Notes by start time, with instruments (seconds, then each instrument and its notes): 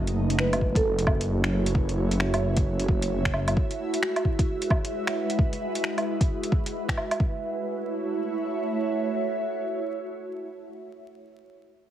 Already playing: detuned saw bass F#1, ambient pad A3 F#4 B4
0.00 ambient pad E4
0.07 closed hi-hat
0.30 closed hi-hat
0.39 marimba B4, finger snap
0.53 closed hi-hat, low woodblock
0.61 ambient pad E5, kick
0.69 ambient pad C#5
0.75 marimba A4, kick, closed hi-hat
0.99 closed hi-hat
1.07 kick, low woodblock
1.21 closed hi-hat
1.44 finger snap, closed hi-hat
1.66 closed hi-hat
1.75 kick
1.89 closed hi-hat
2.11 closed hi-hat
2.20 finger snap
2.34 closed hi-hat, low woodblock
2.57 kick, closed hi-hat
2.80 closed hi-hat
2.89 kick
3.02 closed hi-hat
3.25 finger snap, kick, closed hi-hat
3.34 low woodblock
3.48 closed hi-hat, low woodblock
3.56 ambient pad G#3, kick
3.71 closed hi-hat
3.94 ambient pad B4, closed hi-hat
4.03 finger snap
4.16 closed hi-hat, low woodblock
4.25 kick
4.39 kick, closed hi-hat
4.62 closed hi-hat
4.70 kick, low woodblock
4.85 closed hi-hat
5.07 finger snap, closed hi-hat
5.30 closed hi-hat
5.39 kick
5.53 closed hi-hat
5.75 closed hi-hat
5.84 finger snap
5.98 closed hi-hat, low woodblock
6.21 kick, closed hi-hat
6.43 closed hi-hat
6.52 kick
6.66 closed hi-hat
6.89 finger snap, kick, closed hi-hat
6.97 low woodblock
7.11 closed hi-hat, low woodblock
7.20 ambient pad A3, kick
7.29 ambient pad E4
7.36 ambient pad F#4
7.41 ambient pad C#5
7.50 ambient pad E5